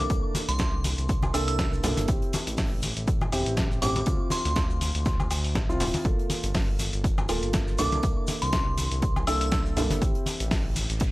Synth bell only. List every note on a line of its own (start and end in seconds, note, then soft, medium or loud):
0.49 1.17 C6 medium
1.34 1.43 E6 medium
1.48 1.55 E6 medium
3.82 4.04 D6 medium
4.32 5.02 C6 medium
7.79 8.01 D6 medium
8.42 9.11 C6 medium
9.27 9.36 E6 medium
9.41 9.48 E6 medium